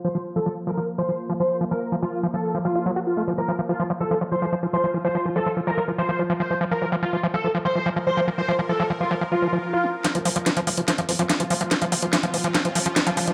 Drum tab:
HH |----------------|----------------|----------------|----------------|
SD |----------------|----------------|----------------|----------------|

HH |----------------|----------------|xxoxxxoxxxoxxxox|xxoxxxoxxxoxxxox|
SD |----------------|----------------|o---o---o---o---|o---o---o---o---|